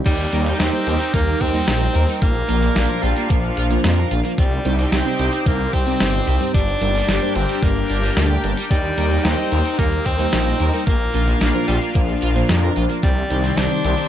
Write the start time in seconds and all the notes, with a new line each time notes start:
0.06 D#2 G3 D#4 G4 A#4 G5, kick, closed hi-hat, crash, cabasa
0.19 closed hi-hat, cabasa
0.33 D#2 G3 A#3 D#4 A#4, closed hi-hat, cabasa
0.46 D#4, closed hi-hat, cabasa
0.59 D#2 C4 D#4, snare, closed hi-hat, cabasa
0.73 G3 A#3 D#4 C5 D#5, closed hi-hat, cabasa
0.87 D#2 A#4, closed hi-hat, cabasa
1.00 D#4, closed hi-hat, cabasa
1.14 D#2 G3 A#3 D#4 A#4, kick, closed hi-hat, cabasa
1.27 closed hi-hat, cabasa
1.41 D#2 C4 A#4, kick, closed hi-hat, cabasa
1.54 G3 A#3 D#4 C5, closed hi-hat, cabasa
1.68 A#1 D#4, snare, closed hi-hat, cabasa
1.81 D#5, closed hi-hat, cabasa
1.95 D#2 A#4, closed hi-hat, cabasa
2.08 G3 A#3 D#4 A#4, closed hi-hat, cabasa
2.22 A#1 A#3 D4 F4 F5, kick, closed hi-hat, cabasa
2.35 closed hi-hat, cabasa
2.49 A#1 A#2 F3 A#3 D4 F4 A#4, closed hi-hat, cabasa
2.62 A#3, closed hi-hat, cabasa
2.76 A#1 A#3, snare, closed hi-hat, cabasa
2.89 A#2 F3 A#3 D4 A#4 C5, closed hi-hat, cabasa
3.03 A#1 G3 F4, closed hi-hat, cabasa
3.17 A#3, closed hi-hat, cabasa
3.30 A#1 A#2 F3 A#3 D4 A#4, kick, closed hi-hat, cabasa
3.44 closed hi-hat, cabasa
3.57 A#1 F4, closed hi-hat, cabasa
3.71 A#2 F3 A#3 D4 C5, closed hi-hat, cabasa
3.84 F2 A#3, snare, closed hi-hat, cabasa
3.98 A#4, closed hi-hat, cabasa
4.11 A#1 F4, closed hi-hat, cabasa
4.25 F3 A#3 D4 A#4, closed hi-hat, cabasa
4.38 C2 G3 C4 D#4 G4 C5 G5, kick, closed hi-hat, cabasa
4.52 closed hi-hat, cabasa
4.65 C2 C3 G3 C4 D#4 G4 C5, closed hi-hat, cabasa
4.79 C4, closed hi-hat, cabasa
4.92 C2 C4, snare, closed hi-hat, cabasa
5.06 C3 G3 C4 D#4 C5 D5, closed hi-hat, cabasa
5.19 C2 G4, closed hi-hat, cabasa
5.33 C4, closed hi-hat, cabasa
5.46 C2 C3 G3 A#3 C4 D#4 C5, kick, closed hi-hat, cabasa
5.60 closed hi-hat, cabasa
5.73 C2 C4 G4, kick, closed hi-hat, cabasa
5.87 C3 G3 C4 D#4 D5, closed hi-hat, cabasa
6.00 G1 C4, snare, closed hi-hat, cabasa
6.14 C5, closed hi-hat, cabasa
6.27 C2 G4, closed hi-hat, cabasa
6.41 G2 G3 C4 D#4 C5, closed hi-hat, cabasa
6.54 G1 G3 D4 G4 A#4 G5, kick, closed hi-hat, cabasa
6.68 closed hi-hat, cabasa
6.81 G1 G2 G3 A#3 D4 A#4, closed hi-hat, cabasa
6.95 G3, closed hi-hat, cabasa
7.08 G1 G3, snare, closed hi-hat, cabasa
7.22 G2 G3 A#3 D4 G4 C5, closed hi-hat, cabasa
7.35 G1 C4 D4, closed hi-hat, cabasa
7.49 G3, closed hi-hat, cabasa
7.63 G1 G2 G3 A#3 D4 A#4, kick, closed hi-hat, cabasa
7.76 closed hi-hat, cabasa
7.90 G1 D4, closed hi-hat, cabasa
8.03 G3, closed hi-hat, cabasa
8.16 D2 G2 G3 A#3 D4 A#4, snare, closed hi-hat, cabasa
8.30 G4, closed hi-hat, cabasa
8.44 G1 G3 A#3 D4 A#4, closed hi-hat, cabasa
8.57 G3, closed hi-hat, cabasa
8.70 D#2 G3 D#4, kick, closed hi-hat, cabasa
8.84 closed hi-hat, cabasa
8.98 D#2 G3 A#3 D#4 A#4, closed hi-hat, cabasa
9.11 D#4, closed hi-hat, cabasa
9.24 D#2 C4 D#4, snare, closed hi-hat, cabasa
9.38 G3 A#3 D#4 C5 D#5, closed hi-hat, cabasa
9.52 D#2 A#4, closed hi-hat, cabasa
9.65 D#4, closed hi-hat, cabasa
9.78 D#2 G3 A#3 D#4 A#4, kick, closed hi-hat, cabasa
9.92 closed hi-hat, cabasa
10.06 D#2 C4 A#4, kick, closed hi-hat, cabasa
10.19 G3 A#3 D#4 C5, closed hi-hat, cabasa
10.33 A#1 D#4, snare, closed hi-hat, cabasa
10.47 D#5, closed hi-hat, cabasa
10.60 D#2 A#4, closed hi-hat, cabasa
10.73 G3 A#3 D#4 A#4, closed hi-hat, cabasa
10.87 A#1 A#3 D4 F4 F5, kick, closed hi-hat, cabasa
11.01 closed hi-hat, cabasa
11.14 A#1 A#2 F3 A#3 D4 F4 A#4, closed hi-hat, cabasa
11.28 A#3, closed hi-hat, cabasa
11.41 A#1 A#3, snare, closed hi-hat, cabasa
11.54 A#2 F3 A#3 D4 A#4 C5, closed hi-hat, cabasa
11.68 A#1 G3 F4, closed hi-hat, cabasa
11.82 A#3, closed hi-hat, cabasa
11.95 A#1 A#2 F3 A#3 D4 A#4, kick, closed hi-hat, cabasa
12.09 closed hi-hat, cabasa
12.22 A#1 F4, closed hi-hat, cabasa
12.35 A#2 F3 A#3 D4 C5, closed hi-hat, cabasa
12.49 F2 A#3, snare, closed hi-hat, cabasa
12.63 A#4, closed hi-hat, cabasa
12.76 A#1 F4, closed hi-hat, cabasa
12.90 F3 A#3 D4 A#4, closed hi-hat, cabasa
13.03 C2 D#3 G3 C4 G4 C5 G5, kick, closed hi-hat, cabasa
13.17 closed hi-hat, cabasa
13.30 C2 C3 G3 C4 D#4 G4 C5, closed hi-hat, cabasa
13.44 C4, closed hi-hat, cabasa
13.57 C2 C4 D4, snare, closed hi-hat, cabasa
13.71 C3 G3 C4 D#4 C5 D5, closed hi-hat, cabasa
13.84 C2 G4, closed hi-hat, cabasa
13.98 C4, closed hi-hat, cabasa